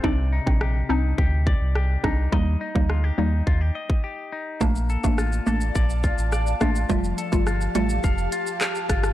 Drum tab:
HH |----------------|----------------|----------------|--x---x---x---x-|
SH |----------------|----------------|xxxxxxxxxxxxxxxx|xxxxxxxxxxxxxxxx|
CP |----------------|----------------|----------------|------------x---|
SD |----r-------r-r-|----r-----------|----r-------r-r-|----r-------r-rr|
BD |o--o----o-o---o-|o--o----o--o----|o--o----o-o---o-|o--o----o-----o-|